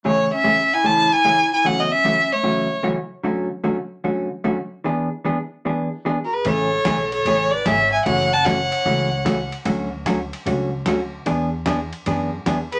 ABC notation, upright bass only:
X:1
M:4/4
L:1/8
Q:"Swing" 1/4=150
K:A
V:1 name="Upright bass" clef=bass
z8 | z8 | z8 | z8 |
A,,,2 B,,,2 A,,,2 G,,,2 | F,,,4 C,,4 | D,,4 C,,2 D,,2 | E,,4 F,,2 E,,2 |]